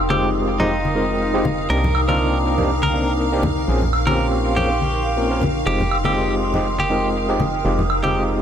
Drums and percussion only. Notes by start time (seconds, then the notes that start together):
0.10 high conga, high woodblock
0.60 low conga
0.85 high conga
1.45 high conga, low conga
1.84 low conga
1.95 high woodblock
2.09 high conga, high woodblock
2.58 low conga
2.83 high conga
3.43 high conga, low conga
3.82 low conga
3.93 high woodblock
4.07 high conga, high woodblock
4.57 low conga
4.81 high conga
5.41 high conga, low conga
5.80 low conga
5.91 high woodblock
6.05 high conga, high woodblock
6.54 low conga
6.79 high conga
7.40 high conga, low conga
7.79 low conga
7.90 high woodblock
8.04 high conga, high woodblock